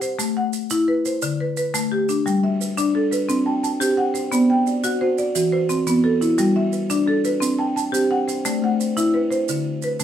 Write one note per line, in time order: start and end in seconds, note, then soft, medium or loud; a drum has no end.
0.00 0.36 C5 medium
0.00 0.36 F#5 medium
0.00 maracas medium
0.19 0.53 A3 medium
0.19 maracas medium
0.37 0.88 F#5 medium
0.53 maracas medium
0.70 1.05 E4 medium
0.70 maracas medium
0.88 1.39 B4 medium
1.05 1.40 C5 medium
1.05 maracas medium
1.22 1.57 D3 medium
1.22 maracas medium
1.40 1.56 B4 medium
1.57 2.09 B4 medium
1.57 maracas medium
1.74 2.08 A3 medium
1.74 maracas medium
1.92 2.43 G4 medium
2.09 2.43 D4 medium
2.09 maracas medium
2.26 2.60 G3 medium
2.26 maracas medium
2.43 2.77 G3 medium
2.43 2.95 E5 medium
2.61 3.10 B4 medium
2.61 maracas medium
2.78 3.12 D4 medium
2.78 3.29 D5 medium
2.78 maracas medium
2.95 3.28 D4 medium
2.95 3.46 A4 medium
3.11 3.46 B4 medium
3.11 3.63 B4 medium
3.11 maracas medium
3.29 3.63 C4 medium
3.29 3.46 D4 medium
3.29 maracas medium
3.46 3.97 G5 medium
3.46 3.62 A5 medium
3.63 4.15 A5 medium
3.63 maracas medium
3.80 4.15 C4 medium
3.80 4.15 G4 medium
3.80 4.14 C5 medium
3.80 maracas medium
3.97 4.49 F#5 medium
3.97 4.49 G5 medium
4.14 4.49 C5 medium
4.14 maracas medium
4.32 4.66 B3 medium
4.32 4.66 D5 medium
4.32 maracas medium
4.50 4.84 B3 medium
4.50 5.01 G5 medium
4.67 5.17 D5 medium
4.67 maracas medium
4.84 5.18 F#4 medium
4.84 5.36 F#5 medium
4.84 maracas medium
5.01 5.35 F#4 medium
5.01 5.51 C5 medium
5.18 5.70 D5 medium
5.18 5.53 D5 medium
5.18 maracas medium
5.35 5.70 E3 medium
5.35 5.53 F#4 medium
5.35 maracas medium
5.52 6.03 B4 medium
5.52 6.04 C5 medium
5.69 6.21 C4 medium
5.69 maracas medium
5.86 6.21 E3 medium
5.86 6.21 B3 medium
5.86 6.20 E4 medium
5.86 maracas medium
6.04 6.56 A4 medium
6.04 6.56 B4 medium
6.21 6.55 E4 medium
6.21 6.56 E4 medium
6.21 maracas medium
6.38 6.73 G3 medium
6.38 6.73 F#4 medium
6.38 maracas medium
6.56 6.90 G3 medium
6.56 7.07 E5 medium
6.73 7.24 B4 medium
6.73 maracas medium
6.90 7.24 D4 medium
6.90 7.42 D5 medium
6.90 maracas medium
7.06 7.40 D4 medium
7.06 7.59 A4 medium
7.25 7.59 B4 medium
7.25 7.76 B4 medium
7.25 maracas medium
7.40 7.75 C4 medium
7.40 7.59 D4 medium
7.40 maracas medium
7.59 8.09 G5 medium
7.59 7.75 A5 medium
7.76 8.28 A5 medium
7.76 maracas medium
7.92 8.28 C4 medium
7.92 8.27 G4 medium
7.92 8.27 C5 medium
7.92 maracas medium
8.11 8.62 F#5 medium
8.11 8.62 G5 medium
8.28 8.62 C5 medium
8.28 8.63 C5 medium
8.28 maracas medium
8.45 8.79 A3 medium
8.45 8.80 D5 medium
8.45 maracas medium
8.62 8.96 A3 medium
8.62 9.15 F#5 medium
8.80 9.31 C5 medium
8.80 maracas medium
8.97 9.31 E4 medium
8.97 9.49 E5 medium
8.97 maracas medium
9.14 9.49 E4 medium
9.14 9.65 B4 medium
9.31 9.65 C5 medium
9.31 9.83 C5 medium
9.31 maracas medium
9.48 9.83 D3 medium
9.48 9.66 E4 medium
9.48 maracas medium
9.82 10.04 B4 medium
9.82 maracas medium
10.00 10.04 D3 medium
10.00 10.04 A3 medium
10.00 10.04 D4 medium
10.00 maracas medium